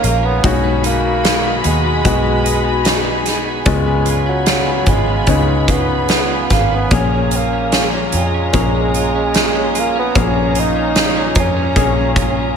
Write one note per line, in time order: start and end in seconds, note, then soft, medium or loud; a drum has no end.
0.00 0.41 A#1 medium
0.00 0.36 G#3 medium
0.00 0.36 A#3 medium
0.00 0.51 A#3 medium
0.00 0.22 C#4 medium
0.00 0.36 C#4 medium
0.00 0.40 F4 medium
0.00 0.51 F4 medium
0.00 0.40 C#5 medium
0.00 12.57 G#5 medium
0.00 0.40 A#5 medium
0.00 closed hi-hat medium
0.05 0.27 A#3 medium
0.23 0.44 B3 medium
0.23 0.51 C#4 medium
0.43 1.61 B1 loud
0.43 2.03 B2 medium
0.43 1.61 B2 medium
0.43 1.97 G#3 medium
0.43 0.82 C#4 loud
0.43 1.97 D#4 medium
0.43 1.97 F#4 medium
0.43 3.64 F#4 medium
0.43 3.64 D#5 medium
0.43 3.63 B5 medium
0.43 kick loud
0.43 closed hi-hat medium
0.64 1.43 B3 medium
0.83 1.62 A#3 loud
0.83 1.22 D#4 medium
0.83 closed hi-hat medium
1.24 1.63 D#4 medium
1.24 snare loud
1.24 closed hi-hat medium
1.44 1.83 B3 medium
1.64 2.02 D#2 medium
1.64 3.23 G#3 medium
1.64 2.43 D#4 medium
1.64 closed hi-hat medium
1.84 2.24 B3 medium
2.04 3.62 B1 loud
2.04 3.74 B2 medium
2.04 3.58 G#3 medium
2.04 3.58 B3 medium
2.04 3.58 F#4 medium
2.04 kick medium
2.04 closed hi-hat medium
2.24 2.63 B3 medium
2.44 2.83 D#4 medium
2.44 closed hi-hat medium
2.64 3.04 B3 medium
2.84 3.24 D#4 medium
2.84 snare loud
2.84 closed hi-hat medium
3.05 3.45 B3 medium
3.25 3.74 D#4 medium
3.25 snare soft
3.25 closed hi-hat medium
3.45 3.86 B3 medium
3.65 4.83 C#2 medium
3.65 5.27 C#3 medium
3.65 4.83 C#3 medium
3.65 4.84 G#3 medium
3.65 4.23 G#3 medium
3.65 5.20 B3 medium
3.65 5.20 C#4 medium
3.65 6.88 F4 medium
3.65 5.20 F4 medium
3.65 12.57 C#5 medium
3.65 6.88 B5 medium
3.65 kick loud
3.65 closed hi-hat medium
3.86 4.25 B3 soft
4.06 4.46 F4 medium
4.06 closed hi-hat medium
4.26 4.91 F#3 medium
4.26 4.66 B3 medium
4.46 4.87 F4 medium
4.46 snare loud
4.46 closed hi-hat medium
4.67 5.07 B3 medium
4.86 5.25 G#1 medium
4.86 5.29 G#3 medium
4.86 5.68 F4 medium
4.86 kick medium
4.86 closed hi-hat medium
5.08 5.47 B3 medium
5.27 6.47 C#2 medium
5.27 7.00 C#3 medium
5.27 5.73 G#3 medium
5.27 6.83 B3 medium
5.27 6.83 C#4 medium
5.27 6.84 D#4 medium
5.27 kick medium
5.27 closed hi-hat medium
5.48 5.87 B3 soft
5.68 6.55 B3 medium
5.68 6.10 F4 medium
5.68 kick medium
5.68 closed hi-hat medium
5.89 6.29 B3 soft
6.08 6.50 F4 medium
6.08 snare loud
6.08 closed hi-hat medium
6.30 6.70 B3 medium
6.50 6.89 G#1 medium
6.50 6.77 A#3 medium
6.50 7.33 F4 medium
6.50 kick medium
6.50 snare soft
6.50 closed hi-hat medium
6.71 7.00 B3 medium
6.71 6.94 B3 medium
6.91 8.09 A#1 medium
6.91 8.09 A#2 medium
6.91 8.09 F3 medium
6.91 8.46 A#3 medium
6.91 8.53 A#3 medium
6.91 8.46 C#4 medium
6.91 12.57 F4 medium
6.91 8.46 G#4 medium
6.91 12.57 A#5 medium
6.91 kick loud
6.91 closed hi-hat medium
6.95 7.37 C#4 medium
7.12 7.52 C#4 soft
7.31 7.72 F4 medium
7.31 closed hi-hat medium
7.36 7.88 A#3 medium
7.53 7.92 C#4 medium
7.72 8.13 F4 medium
7.72 snare loud
7.72 closed hi-hat medium
7.94 8.33 C#4 medium
8.12 8.51 F2 medium
8.12 8.94 F4 medium
8.12 closed hi-hat medium
8.17 9.81 G#3 loud
8.34 8.74 C#4 medium
8.53 10.11 A#1 loud
8.53 10.07 A#3 medium
8.53 10.14 A#3 medium
8.53 10.07 C#4 medium
8.53 10.08 G#4 medium
8.53 kick medium
8.53 closed hi-hat medium
8.75 9.14 C#4 medium
8.94 9.34 F4 medium
8.94 closed hi-hat medium
9.15 9.54 C#4 medium
9.34 9.74 F4 medium
9.34 snare medium
9.34 closed hi-hat medium
9.55 9.94 C#4 medium
9.75 10.55 F4 medium
9.75 closed hi-hat medium
9.79 9.97 A#3 medium
9.96 10.22 B3 loud
9.96 10.34 C#4 medium
10.15 11.32 A#1 medium
10.15 11.32 A#2 medium
10.15 11.32 F3 medium
10.15 11.68 A#3 medium
10.15 11.76 A#3 medium
10.15 11.68 C#4 medium
10.15 11.68 G#4 medium
10.15 kick loud
10.15 closed hi-hat medium
10.21 10.62 C#4 loud
10.36 10.75 C#4 medium
10.55 10.95 F4 medium
10.55 closed hi-hat medium
10.60 11.38 D#4 loud
10.76 11.15 C#4 medium
10.96 11.35 F4 medium
10.96 snare loud
10.96 closed hi-hat medium
11.17 11.55 C#4 medium
11.35 11.73 F2 medium
11.35 12.16 F4 medium
11.35 kick medium
11.35 closed hi-hat medium
11.40 12.57 C#4 loud
11.57 11.96 C#4 medium
11.76 12.57 A#1 loud
11.76 12.57 A#3 medium
11.76 12.57 C#4 medium
11.76 12.57 G#4 medium
11.76 kick medium
11.76 closed hi-hat medium
11.97 12.36 C#4 medium
12.16 12.55 F4 medium
12.16 kick medium
12.16 closed hi-hat medium
12.37 12.57 C#4 medium